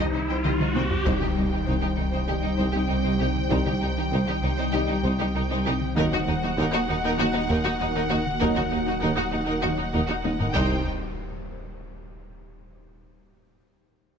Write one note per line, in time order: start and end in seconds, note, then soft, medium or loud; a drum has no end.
0.00 1.06 C2 medium
0.00 0.09 D#3 medium
0.00 1.04 G3 medium
0.00 1.04 D#4 medium
0.00 1.04 G4 medium
0.00 1.04 C5 medium
0.00 riser medium
0.13 0.20 C2 medium
0.13 0.21 C2 medium
0.13 0.24 D#3 medium
0.13 0.19 D#4 medium
0.13 0.21 D#4 soft
0.13 0.20 C5 medium
0.27 0.36 C2 medium
0.27 0.39 C3 medium
0.27 0.34 D#4 medium
0.27 0.36 C5 medium
0.27 0.36 G5 medium
0.43 0.51 C2 medium
0.43 0.52 C2 medium
0.43 0.54 D#3 medium
0.43 0.50 D#4 medium
0.43 0.51 G4 medium
0.43 0.51 D#5 medium
0.43 taiko mid medium
0.60 0.66 C2 medium
0.60 0.70 D#3 medium
0.60 0.67 D#4 medium
0.60 0.67 C5 medium
0.60 taiko mid medium
0.74 0.81 C2 medium
0.74 0.82 C2 medium
0.74 0.85 C3 medium
0.74 0.80 D#4 medium
0.74 0.81 C5 medium
0.74 0.82 G5 medium
0.74 taiko high medium
0.91 taiko low loud
1.05 1.12 C2 medium
1.05 5.98 C2 medium
1.05 1.13 C2 medium
1.05 1.16 C3 loud
1.05 5.91 G3 medium
1.05 1.27 G3 medium
1.05 5.91 D#4 medium
1.05 1.11 D#4 medium
1.05 1.27 D#4 medium
1.05 5.91 G4 medium
1.05 5.91 C5 medium
1.05 1.12 C5 medium
1.05 5.92 G5 medium
1.05 taiko loud
1.05 impact medium
1.21 1.27 C2 medium
1.21 1.32 G3 medium
1.21 1.27 D#4 soft
1.21 1.28 G4 medium
1.21 taiko mid medium
1.36 1.43 C2 medium
1.36 1.44 C2 medium
1.36 1.47 G3 medium
1.36 1.43 D#4 medium
1.36 1.44 D#4 soft
1.52 1.58 C2 medium
1.52 1.62 D#3 medium
1.52 1.58 D#4 medium
1.52 1.58 G4 medium
1.66 1.73 C2 medium
1.66 1.74 C2 medium
1.66 1.78 C3 loud
1.66 1.74 D#4 medium
1.66 1.72 C5 medium
1.81 1.89 C2 medium
1.81 1.93 D#3 medium
1.81 1.89 D#4 medium
1.81 1.88 G4 medium
1.96 2.04 C2 medium
1.96 2.05 C2 medium
1.96 2.08 C4 medium
1.96 2.03 D#4 soft
1.96 2.05 D#4 medium
2.12 2.19 C2 medium
2.12 2.23 C3 loud
2.12 2.19 D#4 medium
2.12 2.18 C5 medium
2.27 2.35 C2 medium
2.27 2.38 D#3 medium
2.27 2.49 G3 medium
2.27 2.49 D#4 medium
2.27 2.34 D#4 medium
2.27 2.34 G4 medium
2.42 2.50 C2 medium
2.42 2.53 G3 medium
2.42 2.49 D#4 medium
2.42 2.50 D#4 medium
2.57 2.65 C2 medium
2.57 2.69 C3 loud
2.57 2.65 D#4 medium
2.57 2.63 C5 medium
2.72 2.81 C2 medium
2.72 2.84 C4 medium
2.72 2.82 D#4 medium
2.72 2.79 G4 medium
2.87 2.95 C2 medium
2.87 2.96 C2 medium
2.87 2.99 C4 medium
2.87 2.94 D#4 medium
2.87 2.96 D#4 medium
3.03 3.11 C2 medium
3.03 3.14 C3 loud
3.03 3.12 D#4 medium
3.03 3.10 C5 medium
3.19 3.26 C2 medium
3.19 3.27 C2 medium
3.19 3.30 C4 medium
3.19 3.27 D#4 medium
3.19 3.26 G4 medium
3.36 taiko mid medium
3.49 3.57 C2 loud
3.49 3.57 C2 medium
3.49 3.58 C2 medium
3.49 3.61 C3 loud
3.49 3.71 G3 medium
3.49 3.71 D#4 medium
3.49 3.57 D#4 medium
3.49 3.56 C5 medium
3.49 taiko loud
3.66 3.73 C2 medium
3.66 3.75 G3 medium
3.66 3.72 D#4 medium
3.66 3.72 G4 medium
3.66 taiko mid medium
3.81 3.88 C2 medium
3.81 3.89 C2 medium
3.81 3.91 G3 medium
3.81 3.88 D#4 medium
3.97 4.04 C2 medium
3.97 4.07 D#3 medium
3.97 4.03 D#4 medium
3.97 4.03 G4 medium
4.12 4.18 C2 loud
4.12 4.19 C2 medium
4.12 4.22 C3 loud
4.12 4.18 D#4 loud
4.12 4.19 C5 medium
4.27 4.34 C2 medium
4.27 4.37 D#3 medium
4.27 4.35 D#4 medium
4.27 4.34 G4 medium
4.43 4.49 C2 medium
4.43 4.53 C4 medium
4.43 4.50 D#4 medium
4.57 4.65 C2 medium
4.57 4.68 C3 loud
4.57 4.64 D#4 medium
4.57 4.63 C5 loud
4.72 4.79 C2 medium
4.72 4.80 C2 medium
4.72 4.83 D#3 medium
4.72 4.94 G3 medium
4.72 4.94 D#4 medium
4.72 4.80 D#4 medium
4.72 4.79 G4 medium
4.87 4.95 C2 medium
4.87 4.99 G3 medium
4.87 4.93 D#4 medium
4.87 4.96 D#4 medium
5.03 5.10 C2 loud
5.03 5.11 C2 loud
5.03 5.14 C3 loud
5.03 5.11 D#4 loud
5.03 5.10 C5 medium
5.19 5.26 C2 medium
5.19 5.29 C4 medium
5.19 5.25 D#4 medium
5.19 5.25 G4 medium
5.35 5.41 C2 medium
5.35 5.42 C2 medium
5.35 5.45 C4 medium
5.35 5.41 D#4 medium
5.35 5.42 D#4 medium
5.50 5.57 C2 loud
5.50 5.60 C3 loud
5.50 5.56 D#4 loud
5.50 5.57 C5 medium
5.66 5.72 C2 medium
5.66 5.73 C2 medium
5.66 5.75 C4 medium
5.66 5.72 D#4 medium
5.66 5.72 G4 medium
5.81 taiko mid medium
5.95 10.55 D#1 medium
5.95 6.03 D#2 loud
5.95 6.05 D#3 loud
5.95 6.17 F#3 medium
5.95 10.55 A#3 loud
5.95 10.51 D#4 loud
5.95 6.17 D#4 loud
5.95 6.03 D#4 loud
5.95 10.55 F#4 loud
5.95 10.55 A#4 medium
5.95 6.04 A#4 loud
5.95 10.52 F#5 medium
5.95 taiko loud
6.12 6.19 D#2 medium
6.12 6.21 A#3 medium
6.12 6.18 D#4 medium
6.12 6.19 F#4 medium
6.12 taiko mid medium
6.27 6.33 D#2 medium
6.27 6.34 D#2 medium
6.27 6.37 A#3 medium
6.27 6.34 D#4 medium
6.43 6.49 D#2 medium
6.43 6.52 F#3 medium
6.43 6.49 D#4 medium
6.43 6.49 F#4 medium
6.58 6.64 D#2 loud
6.58 6.65 D#2 loud
6.58 6.67 D#3 loud
6.58 6.64 D#4 loud
6.58 6.65 A#4 loud
6.72 6.80 D#2 medium
6.72 6.82 F#3 medium
6.72 6.79 D#4 medium
6.72 6.80 F#4 medium
6.88 6.95 D#2 medium
6.88 6.96 D#2 medium
6.88 6.94 D#4 medium
6.88 6.98 D#4 medium
6.88 6.95 D#4 medium
7.04 7.11 D#2 loud
7.04 7.13 D#3 loud
7.04 7.10 D#4 loud
7.04 7.10 A#4 loud
7.18 7.25 D#2 medium
7.18 7.26 D#2 medium
7.18 7.40 F#3 medium
7.18 7.28 F#3 medium
7.18 7.40 D#4 medium
7.18 7.25 D#4 medium
7.18 7.25 F#4 medium
7.34 7.41 D#2 medium
7.34 7.43 A#3 medium
7.34 7.40 D#4 medium
7.34 7.41 D#4 medium
7.49 7.55 D#2 loud
7.49 7.56 D#2 loud
7.49 7.59 D#3 loud
7.49 7.57 D#4 loud
7.49 7.55 A#4 loud
7.64 7.71 D#2 medium
7.64 7.74 D#4 medium
7.64 7.72 D#4 medium
7.64 7.70 F#4 medium
7.80 7.86 D#2 medium
7.80 7.87 D#2 medium
7.80 7.86 D#4 medium
7.80 7.87 D#4 medium
7.80 7.90 D#4 medium
7.95 8.01 D#2 loud
7.95 8.05 D#3 loud
7.95 8.01 D#4 loud
7.95 8.02 A#4 loud
8.10 8.17 D#2 medium
8.10 8.18 D#2 medium
8.10 8.17 D#4 medium
8.10 8.20 D#4 medium
8.10 8.16 F#4 medium
8.26 taiko mid medium
8.40 8.47 D#2 loud
8.40 8.48 D#2 loud
8.40 8.51 D#3 loud
8.40 8.62 F#3 medium
8.40 8.47 D#4 loud
8.40 8.63 D#4 medium
8.40 8.46 A#4 loud
8.40 taiko loud
8.56 8.63 D#2 medium
8.56 8.66 A#3 medium
8.56 8.62 D#4 medium
8.56 8.63 F#4 medium
8.56 taiko mid medium
8.71 8.78 D#2 medium
8.71 8.81 A#3 medium
8.71 8.77 D#4 medium
8.71 8.78 D#4 medium
8.86 8.93 D#2 medium
8.86 8.97 F#3 medium
8.86 8.93 D#4 medium
8.86 8.93 F#4 medium
9.00 9.08 D#2 loud
9.00 9.09 D#2 loud
9.00 9.12 D#3 loud
9.00 9.07 D#4 loud
9.00 9.08 A#4 loud
9.16 9.24 D#2 medium
9.16 9.28 F#3 medium
9.16 9.22 D#4 medium
9.16 9.23 F#4 medium
9.31 9.39 D#2 medium
9.31 9.38 D#4 medium
9.31 9.43 D#4 medium
9.46 9.54 D#2 medium
9.46 9.58 D#3 loud
9.46 9.52 D#4 medium
9.46 9.53 A#4 loud
9.61 9.69 D#2 medium
9.61 9.70 D#2 medium
9.61 9.85 F#3 medium
9.61 9.73 F#3 medium
9.61 9.68 D#4 medium
9.61 9.85 D#4 medium
9.61 9.69 F#4 medium
9.78 9.84 D#2 medium
9.78 9.88 A#3 medium
9.78 9.84 D#4 medium
9.93 10.00 D#2 medium
9.93 10.01 D#2 medium
9.93 10.04 D#3 loud
9.93 10.00 D#4 loud
9.93 9.99 A#4 medium
10.08 10.15 D#2 medium
10.08 10.15 D#4 medium
10.08 10.19 D#4 medium
10.08 10.14 F#4 medium
10.23 10.30 D#2 medium
10.23 10.31 D#2 medium
10.23 10.32 D#2 medium
10.23 10.29 D#4 medium
10.23 10.31 D#4 medium
10.23 10.34 D#4 medium
10.23 taiko high loud
10.38 10.46 D#2 medium
10.38 10.50 D#3 medium
10.38 10.45 D#4 medium
10.38 10.46 A#4 medium
10.38 taiko low-mid medium
10.54 10.89 C2 medium
10.54 10.89 C2 loud
10.54 10.81 C2 medium
10.54 10.90 C2 medium
10.54 10.81 G3 medium
10.54 10.81 D#4 medium
10.54 10.89 D#4 medium
10.54 10.90 C5 medium
10.54 10.89 G5 medium
10.54 taiko loud
10.54 impact medium